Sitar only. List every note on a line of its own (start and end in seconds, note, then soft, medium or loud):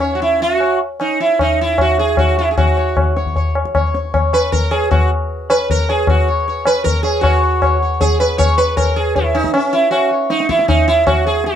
0.00 0.18 C#4 medium
0.00 0.19 C#5 soft
0.15 0.21 F#4 medium
0.22 0.41 E4 medium
0.42 0.78 F#4 loud
0.60 0.79 C#5 soft
1.01 1.20 D#4 medium
1.20 1.40 E4 medium
1.41 1.60 D#4 medium
1.61 1.81 E4 medium
1.81 1.99 F#4 medium
1.99 2.18 G#4 medium
2.18 2.38 F#4 medium
2.39 2.51 E4 medium
2.51 2.57 G#4 medium
2.57 3.12 F#4 medium
2.77 2.95 C#5 soft
3.16 3.35 C#5 soft
3.36 3.54 C#5 soft
3.75 3.93 C#5 soft
3.95 4.13 C#5 soft
4.14 4.32 C#5 soft
4.34 4.52 B4 medium
4.52 4.73 A#4 medium
4.71 4.90 G#4 medium
4.91 5.09 F#4 medium
5.50 5.70 B4 loud
5.71 5.90 A#4 loud
5.89 6.07 G#4 medium
6.10 6.27 F#4 medium
6.28 6.46 C#5 soft
6.48 6.65 C#5 soft
6.67 6.84 B4 loud
6.84 7.02 A#4 loud
7.03 7.22 G#4 medium
7.21 7.76 F#4 medium
7.21 7.41 C#5 soft
7.43 7.61 C#5 soft
7.62 7.80 C#5 soft
7.82 8.00 C#5 soft
8.01 8.20 G#4 loud
8.20 8.38 B4 loud
8.38 8.57 C#5 loud
8.58 8.76 B4 loud
8.77 8.97 A#4 loud
8.96 9.16 G#4 loud
9.16 9.36 E4 medium
9.35 9.53 D#4 loud
9.54 9.74 C#4 medium
9.73 9.90 E4 loud
9.91 10.09 F#4 medium
10.11 10.29 C#5 soft
10.30 10.49 D#4 medium
10.49 10.68 E4 medium
10.68 10.87 D#4 medium
10.88 11.06 E4 loud
11.07 11.26 F#4 medium
11.26 11.45 G#4 medium
11.46 11.55 F#4 medium